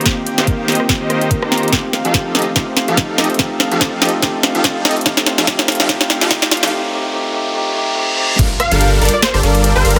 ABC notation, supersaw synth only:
X:1
M:4/4
L:1/16
Q:"Swing 16ths" 1/4=144
K:Gm
V:1 name="Supersaw synth"
[E,EGcf] z2 [E,EGcf]3 [E,EGce] z2 [E,EGce]4 [E,EGcb]3 | [F,EGAf] z2 [F,EGAf]3 [F,EGAe] z [F,EGAf] z2 [F,EGAf]3 [F,EGAe] z | [F,EGAf] z2 [F,EGAf]3 [F,EGAe] z [F,EGAf] z2 [F,EGAf]3 [F,EGAe] z | [F,EGAf] z2 [F,EGAf] [F,EGAf] z2 [F,EGAf] [F,EGAf] z2 [F,EGAf] [F,EGAf] z2 [F,EGAf] |
z16 | [G,DABf] z2 [G,DABf]3 [G,DABd] z2 [G,DABd] [G,DABd]3 [G,DABg] [G,DABf]2 |]